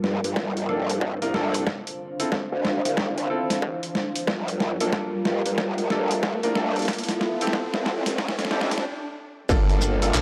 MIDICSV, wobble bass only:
0, 0, Header, 1, 2, 480
1, 0, Start_track
1, 0, Tempo, 652174
1, 1228, Time_signature, 4, 2, 24, 8
1, 7520, End_track
2, 0, Start_track
2, 0, Title_t, "Wobble bass"
2, 0, Program_c, 0, 39
2, 27, Note_on_c, 0, 43, 91
2, 153, Note_off_c, 0, 43, 0
2, 177, Note_on_c, 0, 43, 97
2, 253, Note_off_c, 0, 43, 0
2, 267, Note_on_c, 0, 31, 101
2, 493, Note_off_c, 0, 31, 0
2, 508, Note_on_c, 0, 29, 102
2, 873, Note_off_c, 0, 29, 0
2, 897, Note_on_c, 0, 36, 86
2, 1213, Note_off_c, 0, 36, 0
2, 1857, Note_on_c, 0, 38, 92
2, 2073, Note_off_c, 0, 38, 0
2, 2096, Note_on_c, 0, 36, 98
2, 2413, Note_off_c, 0, 36, 0
2, 3146, Note_on_c, 0, 31, 96
2, 3512, Note_off_c, 0, 31, 0
2, 3536, Note_on_c, 0, 34, 103
2, 3613, Note_off_c, 0, 34, 0
2, 3867, Note_on_c, 0, 43, 96
2, 3993, Note_off_c, 0, 43, 0
2, 4016, Note_on_c, 0, 43, 94
2, 4093, Note_off_c, 0, 43, 0
2, 4106, Note_on_c, 0, 31, 102
2, 4332, Note_off_c, 0, 31, 0
2, 4346, Note_on_c, 0, 29, 98
2, 4712, Note_off_c, 0, 29, 0
2, 4734, Note_on_c, 0, 36, 88
2, 5052, Note_off_c, 0, 36, 0
2, 5697, Note_on_c, 0, 29, 98
2, 5913, Note_off_c, 0, 29, 0
2, 5935, Note_on_c, 0, 29, 102
2, 6152, Note_off_c, 0, 29, 0
2, 6175, Note_on_c, 0, 41, 95
2, 6507, Note_off_c, 0, 41, 0
2, 6986, Note_on_c, 0, 31, 96
2, 7453, Note_off_c, 0, 31, 0
2, 7466, Note_on_c, 0, 34, 92
2, 7520, Note_off_c, 0, 34, 0
2, 7520, End_track
0, 0, End_of_file